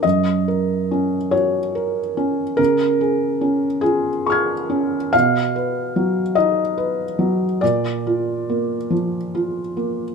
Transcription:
0.03 F#2 D#5
0.48 A#4
0.91 C#4
1.31 F#4 C#5
1.75 A#4
2.17 C#4
2.57 C#3 A#4
3.01 G#4
3.41 C#4
3.81 F4 G#4
4.26 G#4 C#6 F6
4.32 G#6
4.70 C#4
5.13 B2 F5
5.56 B4
5.96 F#3
6.35 D#4 D#5
6.78 B4
7.19 F#3
7.61 A#2 D5
8.07 F4
8.49 A#3
8.90 F3
9.35 F4
9.77 A#3

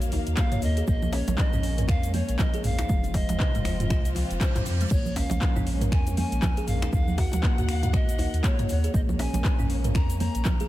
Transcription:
Already playing: A#1 D#3 A#3 C#5 F5
0.02 closed hi-hat, shaker
0.12 D#4, open hi-hat, muted conga, djembe tone, shaker
0.27 D#2, closed hi-hat, shaker
0.37 A#3 F5, finger snap, kick, clap, high conga, shaker
0.52 C#5, closed hi-hat, mid tom, muted conga, shaker
0.62 D#2 D#5, open hi-hat, djembe tone, shaker
0.77 G#4, closed hi-hat, shaker
0.87 A#1 G#3 A#3 C#4 D#5, kick, muted conga, high conga, shaker
1.02 djembe tone, low conga, shaker
1.13 C#4 C#5, open hi-hat, djembe slap, shaker
1.27 A#1, closed hi-hat, djembe slap, high conga, low conga, shaker
1.38 F3 D#5, kick, clap, muted conga, shaker
1.53 A#1 C#4, mid tom, djembe tone, shaker
1.63 open hi-hat, shaker
1.78 A#4, closed hi-hat, mid tom, muted conga, shaker
1.88 F2 A#4 F5, finger snap, kick, djembe tone, shaker
2.03 closed hi-hat, shaker
2.14 A#3 C#5, open hi-hat, muted conga, high conga, low conga, shaker
2.29 A#1, closed hi-hat, shaker
2.38 F3 D#5, kick, clap, djembe tone, low conga, shaker
2.53 G#4, closed hi-hat, muted conga, high conga, shaker
2.64 A#1 F5, mid tom, open hi-hat, shaker
2.79 D#4, finger snap, closed hi-hat, djembe slap, djembe tone, shaker
2.89 F1 F3 C4 F4, kick, muted conga, high conga, shaker
3.03 closed hi-hat, low conga, shaker
3.14 G#3 D#5, kick, open hi-hat, djembe slap, shaker
3.29 F1, closed hi-hat, djembe slap, djembe tone, high conga, low conga, shaker
3.40 C3, kick, clap, muted conga, shaker
3.55 F1 G#3, closed hi-hat, mid tom, shaker
3.65 finger snap, open hi-hat, djembe tone, shaker
3.80 F4, closed hi-hat, mid tom, muted conga, shaker
3.90 C2 F4, finger snap, kick, reverse cymbal, high conga, shaker
4.05 closed hi-hat, shaker
4.15 F3, open hi-hat, muted conga, djembe tone, shaker
4.30 F1, closed hi-hat, shaker
4.40 F3 C5, finger snap, kick, clap, high conga, shaker
4.55 F3, clap, closed hi-hat, mid tom, muted conga, djembe tone, shaker
4.66 F2 C5, open hi-hat, shaker
4.81 G#3, closed hi-hat, shaker
4.91 A#1 G#3 A#3 C#4 C#5, kick, crash, muted conga, high conga, shaker
5.05 low conga, shaker
5.16 C#4 F5, open hi-hat, djembe slap, djembe tone, shaker
5.30 A#1, closed hi-hat, djembe slap, high conga, low conga, shaker
5.41 F3, kick, clap, muted conga, shaker
5.56 A#1 C#4, mid tom, djembe tone, shaker
5.67 open hi-hat, shaker
5.81 A#4, closed hi-hat, mid tom, muted conga, shaker
5.92 F2 A#4 G#5, finger snap, kick, shaker
6.07 closed hi-hat, djembe tone, shaker
6.17 A#3 G#5, open hi-hat, muted conga, high conga, low conga, shaker
6.32 A#1, closed hi-hat, shaker
6.42 F3, kick, clap, djembe tone, low conga, shaker
6.57 G#4, closed hi-hat, muted conga, high conga, shaker
6.67 A#1 F5, mid tom, open hi-hat, shaker
6.82 D#4, finger snap, closed hi-hat, djembe slap, shaker
6.92 D#2 D#3 D#4 F5 F#5, kick, muted conga, djembe tone, high conga, shaker
7.08 low conga, shaker
7.18 F#4 F#5, kick, open hi-hat, djembe slap, shaker
7.32 D#2, closed hi-hat, djembe slap, djembe tone, high conga, low conga, shaker
7.43 A#3, kick, clap, muted conga, shaker
7.58 D#2 F#4, closed hi-hat, mid tom, shaker
7.69 F5, finger snap, open hi-hat, shaker
7.83 D#5, closed hi-hat, mid tom, muted conga, djembe tone, shaker
7.93 A#1 D#5, finger snap, kick, high conga, shaker
8.09 closed hi-hat, shaker
8.18 D#4, open hi-hat, muted conga, djembe tone, shaker
8.33 D#2, closed hi-hat, shaker
8.43 A#3 C#5, finger snap, kick, clap, high conga, shaker
8.59 C#5, closed hi-hat, mid tom, muted conga, shaker
8.69 D#2 C#5, open hi-hat, djembe tone, shaker
8.84 G#4, closed hi-hat, shaker
8.94 A#1 G#3 A#3 C#4 D#5, kick, muted conga, high conga, shaker
9.09 djembe tone, low conga, shaker
9.19 C#4 G#5, open hi-hat, djembe slap, shaker
9.33 A#1, closed hi-hat, djembe slap, high conga, low conga, shaker
9.45 F3, kick, clap, muted conga, shaker
9.59 A#1 C#4, mid tom, djembe tone, shaker
9.70 open hi-hat, shaker
9.84 A#4, closed hi-hat, mid tom, muted conga, shaker
9.95 F2 A#4 A#5, finger snap, kick, djembe tone, shaker
10.10 closed hi-hat, shaker
10.20 A#3 A#5, open hi-hat, muted conga, high conga, low conga, shaker
10.35 A#1, closed hi-hat, shaker
10.45 F3, kick, clap, djembe tone, low conga, shaker
10.60 G#4, closed hi-hat, muted conga, high conga, shaker

